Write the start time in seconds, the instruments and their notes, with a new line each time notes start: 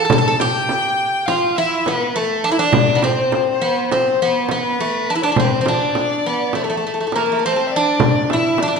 Already playing: violin A5
0.05 bouzouki A4
0.10 bouzouki A4, frame drum
0.18 bouzouki A4
0.28 bouzouki A4
0.40 bouzouki G4, violin G5, frame drum
0.69 frame drum
1.26 bouzouki F4, violin F5, frame drum
1.56 bouzouki E4, violin E5
1.86 bouzouki B3, violin B4, frame drum
2.16 bouzouki A3, violin A4
2.44 bouzouki D4
2.52 bouzouki E4, violin E5
2.59 bouzouki D4, violin D5
2.73 frame drum
2.95 bouzouki B3
3.03 bouzouki C4, violin C5, frame drum
3.32 frame drum
3.50 violin C5
3.62 bouzouki B3
3.92 bouzouki C4, violin C5, frame drum
4.22 bouzouki B3
4.44 violin C5
4.49 bouzouki B3, violin B4, frame drum
4.80 bouzouki A3
5.10 bouzouki D4
5.15 bouzouki E4
5.22 bouzouki D4, violin D5
5.32 bouzouki D4
5.36 bouzouki C4, violin C5, frame drum
5.44 violin B4
5.53 violin C5
5.61 bouzouki C4
5.66 bouzouki D4, violin D5, frame drum
5.95 frame drum
6.26 bouzouki B3
6.53 bouzouki A3, violin A4, frame drum
6.64 bouzouki A3
6.70 bouzouki A3
6.77 bouzouki A3
6.87 bouzouki A3
6.94 bouzouki A3
7.01 bouzouki A3
7.07 bouzouki A3
7.12 bouzouki A#3, violin A#4, frame drum
7.16 bouzouki A3
7.26 bouzouki A3
7.32 bouzouki A3
7.39 bouzouki A3
7.45 bouzouki A3 C4, violin C5
7.56 bouzouki A3
7.67 violin E5
7.72 violin D5
7.76 bouzouki D4
8.00 frame drum
8.30 bouzouki E4, violin E5, frame drum
8.58 violin D5, frame drum
8.63 bouzouki D4
8.68 bouzouki D4
8.76 bouzouki D4